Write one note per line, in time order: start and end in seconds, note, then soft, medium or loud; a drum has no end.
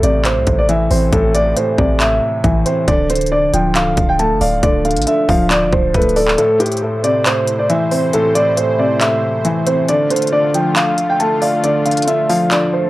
0.00 0.38 A1 loud
0.00 0.25 A2 medium
0.00 1.13 C3 medium
0.00 0.22 D5 medium
0.00 closed hi-hat medium
0.25 1.11 A2 medium
0.25 0.57 C5 medium
0.25 clap loud
0.25 closed hi-hat medium
0.37 0.46 C2 medium
0.47 0.89 A1 loud
0.47 kick medium
0.47 closed hi-hat medium
0.59 0.67 D5 medium
0.69 1.78 E3 medium
0.69 0.88 E5 medium
0.69 closed hi-hat medium
0.91 1.12 A1 loud
0.91 2.00 C4 medium
0.91 1.09 C5 medium
0.91 open hi-hat medium
1.13 1.55 A1 loud
1.13 1.33 A2 medium
1.13 1.31 A4 medium
1.13 kick loud
1.13 closed hi-hat medium
1.35 1.55 A2 medium
1.35 1.53 D5 loud
1.35 closed hi-hat medium
1.56 1.99 A2 medium
1.56 1.75 C5 medium
1.56 closed hi-hat medium
1.78 2.20 A1 loud
1.78 2.88 C3 medium
1.78 1.97 D5 medium
1.78 kick loud
2.00 2.88 A2 medium
2.00 2.62 E5 medium
2.00 clap loud
2.00 closed hi-hat medium
2.44 2.65 A1 loud
2.44 2.88 E3 medium
2.44 kick medium
2.44 closed hi-hat medium
2.66 2.88 C4 medium
2.66 2.84 C5 medium
2.66 closed hi-hat medium
2.88 3.51 D1 loud
2.88 3.08 D3 loud
2.88 3.06 D5 medium
2.88 kick loud
2.88 closed hi-hat medium
3.10 3.30 D3 medium
3.10 3.28 C5 medium
3.10 closed hi-hat medium
3.15 closed hi-hat medium
3.21 closed hi-hat medium
3.26 closed hi-hat soft
3.32 3.74 D3 medium
3.32 3.50 D5 medium
3.53 3.77 D1 loud
3.53 4.63 F3 medium
3.53 3.72 G5 medium
3.53 closed hi-hat medium
3.75 3.96 C1 loud
3.75 4.61 D3 medium
3.75 4.07 F5 medium
3.75 clap loud
3.75 closed hi-hat medium
3.97 4.32 D1 loud
3.97 kick medium
3.97 closed hi-hat medium
4.09 4.18 G5 medium
4.19 5.29 A3 medium
4.19 4.38 A5 medium
4.19 closed hi-hat medium
4.31 4.41 F1 loud
4.41 4.62 D1 loud
4.41 5.51 D5 medium
4.41 4.60 F5 medium
4.41 open hi-hat medium
4.63 4.98 D1 loud
4.63 4.83 D3 medium
4.63 4.82 D5 medium
4.63 kick loud
4.63 closed hi-hat medium
4.85 5.05 D3 medium
4.85 5.04 F5 medium
4.85 closed hi-hat soft
4.91 closed hi-hat medium
4.97 5.06 A1 loud
4.97 closed hi-hat medium
5.02 closed hi-hat medium
5.07 5.49 D3 medium
5.07 5.25 E5 medium
5.07 closed hi-hat medium
5.29 5.64 D1 loud
5.29 6.38 F3 loud
5.29 5.47 F5 medium
5.29 kick loud
5.29 open hi-hat medium
5.50 6.38 D3 medium
5.50 5.69 D5 medium
5.50 clap loud
5.50 closed hi-hat medium
5.62 5.72 E1 loud
5.73 5.94 D1 loud
5.73 5.91 C5 medium
5.73 kick medium
5.94 6.36 D1 loud
5.94 6.38 A3 medium
5.94 6.13 B4 medium
5.94 kick medium
5.94 closed hi-hat medium
6.02 closed hi-hat medium
6.09 closed hi-hat soft
6.16 6.35 A4 medium
6.16 6.38 D5 medium
6.16 open hi-hat medium
6.28 clap medium
6.38 6.59 A2 medium
6.38 12.90 A3 medium
6.38 9.85 E4 medium
6.38 6.57 A4 medium
6.38 9.85 C5 medium
6.38 closed hi-hat medium
6.60 6.80 A2 medium
6.60 6.79 G4 medium
6.60 closed hi-hat medium
6.66 closed hi-hat medium
6.72 closed hi-hat medium
6.77 closed hi-hat soft
6.82 7.24 A2 medium
6.82 7.00 A4 medium
7.04 8.13 C3 medium
7.04 7.22 D5 medium
7.04 closed hi-hat medium
7.26 8.12 A2 medium
7.26 7.57 C5 medium
7.26 clap loud
7.26 closed hi-hat medium
7.47 closed hi-hat medium
7.59 7.68 D5 medium
7.69 8.79 E3 loud
7.69 7.88 E5 medium
7.69 closed hi-hat medium
7.91 9.01 C4 medium
7.91 8.10 C5 medium
7.91 open hi-hat medium
8.13 8.34 A2 medium
8.13 8.32 A4 loud
8.13 closed hi-hat medium
8.35 8.56 A2 medium
8.35 8.54 D5 medium
8.35 closed hi-hat medium
8.57 8.99 A2 medium
8.57 8.76 C5 medium
8.57 closed hi-hat medium
8.79 9.89 C3 medium
8.79 8.98 D5 medium
9.01 9.89 A2 medium
9.01 9.63 E5 medium
9.01 clap loud
9.01 closed hi-hat medium
9.45 9.89 E3 medium
9.45 closed hi-hat medium
9.67 9.89 C4 medium
9.67 9.85 C5 medium
9.67 closed hi-hat medium
9.88 10.09 D3 loud
9.88 12.90 D3 medium
9.88 12.90 F4 medium
9.88 10.07 D5 medium
9.88 closed hi-hat medium
10.10 10.31 D3 medium
10.10 10.29 C5 medium
10.10 closed hi-hat medium
10.16 closed hi-hat medium
10.22 closed hi-hat medium
10.27 closed hi-hat soft
10.32 10.75 D3 medium
10.32 10.51 D5 medium
10.54 11.64 F3 medium
10.54 10.73 G5 medium
10.54 closed hi-hat medium
10.76 11.62 D3 medium
10.76 11.08 F5 medium
10.76 clap loud
10.76 closed hi-hat medium
10.98 closed hi-hat medium
11.10 11.18 G5 medium
11.20 12.29 A3 medium
11.20 11.39 A5 medium
11.20 closed hi-hat medium
11.42 12.51 D5 medium
11.42 11.61 F5 medium
11.42 open hi-hat medium
11.64 11.84 D3 medium
11.64 11.82 D5 medium
11.64 closed hi-hat medium
11.86 12.06 D3 medium
11.86 12.04 F5 medium
11.86 closed hi-hat soft
11.91 closed hi-hat medium
11.97 closed hi-hat medium
12.02 closed hi-hat medium
12.07 12.50 D3 medium
12.07 12.26 E5 medium
12.07 closed hi-hat medium
12.29 12.90 F3 loud
12.29 12.48 F5 medium
12.29 open hi-hat medium
12.51 12.90 D3 medium
12.51 12.70 D5 medium
12.51 clap loud
12.51 closed hi-hat medium
12.73 12.90 C5 medium